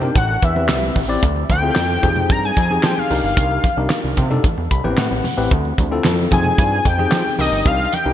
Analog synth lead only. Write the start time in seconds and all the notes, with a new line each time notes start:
Already playing: G5
0.17 F#5
0.44 E5
1.51 G5
2.32 A#5
2.45 G#5
2.85 G5
2.99 F5
3.25 F5
6.33 G#5
6.87 G5
7.40 D#5
7.67 F5
7.94 G5